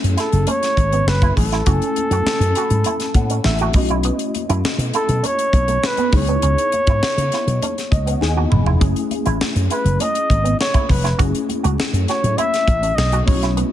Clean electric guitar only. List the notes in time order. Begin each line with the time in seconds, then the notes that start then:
0.17 E4
0.47 C#4
0.78 muted clean electric guitar stroke
0.93 B3
1.22 E4
1.37 muted clean electric guitar stroke
1.52 E4
1.67 F#4
1.97 muted clean electric guitar stroke
2.12 F#4
2.57 F#4
2.86 E4
3.15 muted clean electric guitar stroke
3.30 C#4
3.61 F#4
3.76 muted clean electric guitar stroke
3.90 E4
4.05 B3
4.35 muted clean electric guitar stroke
4.49 E4
4.94 E4
5.23 C#4
5.53 muted clean electric guitar stroke
5.68 A3
5.98 B3
6.13 muted clean electric guitar stroke
6.28 B3
6.43 C#4
6.73 muted clean electric guitar stroke
6.89 E4
7.34 E4
7.62 C#4
7.92 muted clean electric guitar stroke
8.07 B3
8.37 F#4
8.52 muted clean electric guitar stroke
8.66 E4
8.81 F#3
9.11 muted clean electric guitar stroke
9.26 E4
9.71 E4
10.01 C#4
10.30 muted clean electric guitar stroke
10.44 B3
10.74 E4
10.89 muted clean electric guitar stroke
11.04 E4
11.19 F#4
11.49 muted clean electric guitar stroke
11.63 F#4
12.09 F#4
12.38 E4
12.68 muted clean electric guitar stroke
12.82 C#4
13.12 F#4
13.28 muted clean electric guitar stroke
13.43 E4
13.57 B3